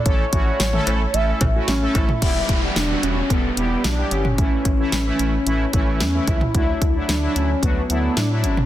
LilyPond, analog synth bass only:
\new Staff \with { instrumentName = "Analog synth bass" } { \clef bass \time 4/4 \key e \dorian \tempo 4 = 111 a,,8 a,,8 a,,8 a,,8 a,,8 a,,8 a,,8 a,,8 | e,,8 e,,8 e,,8 e,,8 e,,8 e,,8 b,,8 g,,8 | a,,8 a,,8 a,,8 a,,8 a,,8 a,,8 e,8 cis,8 | d,8 d,8 d,8 d,8 d,8 d,8 a,8 g,,8 | }